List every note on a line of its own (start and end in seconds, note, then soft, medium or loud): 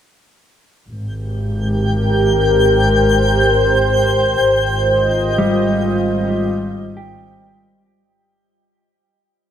0.88 4.35 G#1 medium
0.88 7.96 G5 medium
0.88 7.96 G6 medium
1.12 5.81 G4 medium
1.54 5.82 A#4 medium
2.25 7.94 C5 medium
4.41 7.88 G#1 medium
4.63 7.94 F4 medium
4.68 7.95 D#5 medium
5.38 8.03 G3 medium
6.97 8.09 G4 medium